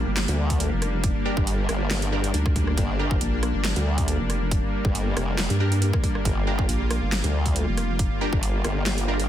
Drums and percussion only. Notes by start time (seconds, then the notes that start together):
0.17 snare, clap, closed hi-hat
0.28 closed hi-hat
0.50 kick, closed hi-hat
0.60 closed hi-hat
0.82 cross-stick, closed hi-hat
1.04 kick, closed hi-hat
1.37 kick
1.47 closed hi-hat
1.69 cross-stick, closed hi-hat
1.91 snare, clap, closed hi-hat
2.02 closed hi-hat
2.24 closed hi-hat
2.34 closed hi-hat
2.46 kick, cross-stick
2.56 kick, closed hi-hat
2.67 cross-stick
2.78 kick, closed hi-hat
3.11 kick
3.21 closed hi-hat
3.43 cross-stick, closed hi-hat
3.65 snare, clap, closed hi-hat
3.76 closed hi-hat
3.98 kick, closed hi-hat
4.08 closed hi-hat
4.30 cross-stick, closed hi-hat
4.51 kick, closed hi-hat
4.85 kick
4.95 closed hi-hat
5.17 cross-stick, closed hi-hat
5.38 snare, clap, closed hi-hat
5.50 closed hi-hat
5.72 closed hi-hat
5.82 closed hi-hat
5.93 kick, cross-stick
6.04 kick, closed hi-hat
6.15 cross-stick
6.25 kick, closed hi-hat
6.59 kick
6.69 closed hi-hat
6.91 cross-stick, closed hi-hat
7.12 snare, clap, closed hi-hat
7.24 closed hi-hat
7.46 kick, closed hi-hat
7.56 closed hi-hat
7.78 cross-stick, closed hi-hat
7.99 kick, closed hi-hat
8.33 kick
8.43 closed hi-hat
8.64 cross-stick, closed hi-hat
8.86 snare, clap, closed hi-hat
8.98 closed hi-hat
9.20 closed hi-hat